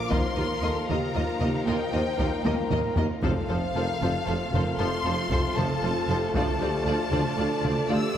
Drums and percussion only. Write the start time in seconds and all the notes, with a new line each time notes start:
0.11 taiko
0.90 taiko mid
1.41 taiko mid
2.19 taiko
2.45 taiko high
2.71 taiko low-mid
2.97 taiko low
3.23 taiko
4.02 taiko mid
4.54 taiko mid
5.32 taiko
5.58 taiko mid
6.35 taiko
7.13 taiko mid
7.65 taiko mid